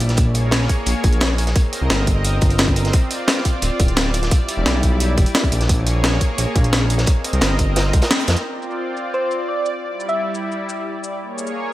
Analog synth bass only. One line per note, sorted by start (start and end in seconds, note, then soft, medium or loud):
0.00 0.68 A#1 loud
0.87 0.94 A#1 loud
1.04 1.54 A#1 loud
1.81 1.89 C2 loud
1.90 2.40 G1 loud
2.42 2.92 G1 medium
3.62 3.70 D1 loud
3.80 4.30 D1 loud
4.57 4.65 E1 loud
4.66 5.19 B1 loud
5.18 5.25 E1 medium
5.52 6.20 A#1 loud
6.38 6.46 A#1 loud
6.56 7.06 A#1 loud
7.33 7.41 C2 loud
7.42 7.95 G1 loud
7.94 8.01 C2 medium
8.28 8.36 F2 loud